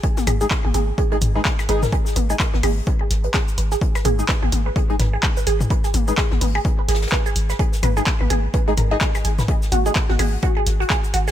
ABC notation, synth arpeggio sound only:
X:1
M:4/4
L:1/16
Q:"Swing 16ths" 1/4=127
K:G#m
V:1 name="Synth arpeggio sound"
G z G G z G G z G G z B G z B A | G z B G z B G z B G z B G z B G | z B G z B G z B G z B G z B G z | B G z B G z B G z B G z B G z B |
G z B G z B G z B G A d G G g B | G z F G z F G z F G z F G z F G |]